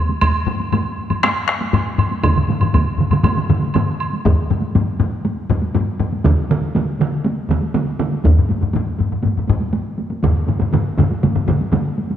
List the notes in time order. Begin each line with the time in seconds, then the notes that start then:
0.09 taiko high
0.21 taiko, taiko high, high woodblock
0.46 taiko low-mid, taiko high
0.60 taiko high
0.72 taiko low-mid, taiko high, high woodblock
1.10 taiko low-mid, taiko high, high woodblock
1.23 taiko rim, taiko high, high woodblock
1.48 taiko rim
1.61 taiko high
1.73 taiko low-mid, taiko high, high woodblock
1.98 taiko low-mid, high woodblock
2.11 taiko high
2.23 taiko, taiko low-mid, taiko mid, taiko high, high woodblock
2.35 taiko low-mid, taiko mid
2.48 taiko low-mid, taiko mid, taiko high
2.61 taiko low-mid, taiko mid, high woodblock
2.73 taiko, taiko low-mid, taiko mid, taiko high, high woodblock
2.98 taiko low-mid, taiko mid
3.11 taiko low-mid, taiko mid, taiko high, high woodblock
3.24 taiko low-mid, taiko mid, taiko high, high woodblock
3.36 taiko low-mid, taiko mid
3.49 taiko low-mid, taiko mid
3.63 taiko high
3.74 taiko low-mid, taiko mid, taiko high, high woodblock
4.00 high woodblock
4.13 taiko high
4.25 taiko, taiko low-mid, taiko high
4.50 taiko low-mid, taiko high
4.62 taiko high
4.75 taiko low-mid, taiko high
4.99 taiko low-mid, taiko high
5.25 taiko high
5.50 taiko, taiko low-mid, taiko high
5.62 taiko high
5.75 taiko low-mid, taiko high
6.00 taiko low-mid, taiko high
6.13 taiko high
6.24 taiko, taiko mid, taiko high
6.49 taiko mid, taiko high
6.62 taiko high
6.75 taiko mid, taiko high
6.99 taiko mid, taiko high
7.24 taiko high
7.49 taiko, taiko mid, taiko high
7.62 taiko high
7.74 taiko mid, taiko high
7.99 taiko mid, taiko high
8.12 taiko high
8.24 taiko, taiko low-mid, taiko high
8.38 taiko low-mid
8.49 taiko low-mid, taiko high
8.61 taiko low-mid, taiko high
8.73 taiko low-mid, taiko high
8.99 taiko low-mid, taiko high
9.13 taiko low-mid
9.23 taiko low-mid, taiko high
9.37 taiko low-mid
9.48 taiko, taiko low-mid, taiko high
9.61 taiko high
9.73 taiko high
9.98 taiko high
10.10 taiko high
10.23 taiko, taiko low-mid, taiko mid, taiko high
10.47 taiko low-mid, taiko mid, taiko high
10.60 taiko low-mid, taiko mid, taiko high
10.73 taiko low-mid, taiko mid, taiko high
10.98 taiko, taiko low-mid, taiko mid, taiko high
11.11 taiko high
11.23 taiko low-mid, taiko mid, taiko high
11.36 taiko low-mid, taiko mid
11.47 taiko, taiko low-mid, taiko mid, taiko high
11.61 taiko high
11.72 taiko low-mid, taiko mid, taiko high
11.98 taiko high
12.11 taiko high